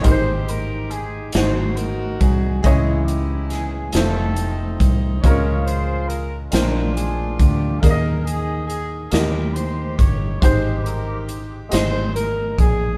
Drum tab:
HH |xxxxxx|xxxxxx|xxxxxx|xxxxxx|
SD |---o--|--oo--|---o--|---o--|
BD |o----o|o----o|o----o|o----o|

HH |xxxxxx|
SD |---o--|
BD |o----o|